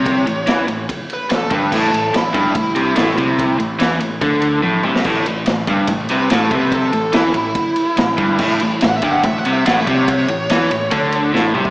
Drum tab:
CC |----------------|x---------------|----------------|x---------------|
RD |x-x-x-x-x-x-x-x-|--x-x-x-x-x-x-x-|x-x-x-x-x-x-----|--x-x-x-x-x-x-x-|
SD |----o-------o---|----o-------o---|----o----------o|----o-------o---|
T1 |----------------|----------------|------------o---|----------------|
T2 |----------------|----------------|--------------o-|----------------|
BD |o-------o-----o-|o-----o-o-----o-|o-------o-------|o-----o-o-----o-|

CC |----------------|x---------------|----------------|
RD |x-x-x-x-x-x-x-x-|--x-x-x-x-x-x-x-|x-x-x-x-x-x-----|
SD |----o-------o---|----o-------o---|----o-------o---|
T1 |----------------|----------------|----------------|
T2 |----------------|----------------|--------------o-|
BD |o-------o-----o-|o-----o-o-----o-|o-------o------o|